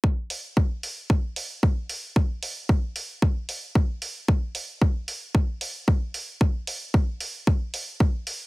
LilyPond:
\new DrumStaff \with { instrumentName = "Drums" } \drummode { \time 4/4 \tempo 4 = 113 bd8 hho8 bd8 hho8 bd8 hho8 bd8 hho8 | bd8 hho8 bd8 hho8 bd8 hho8 bd8 hho8 | bd8 hho8 bd8 hho8 bd8 hho8 bd8 hho8 | bd8 hho8 bd8 hho8 bd8 hho8 bd8 hho8 | }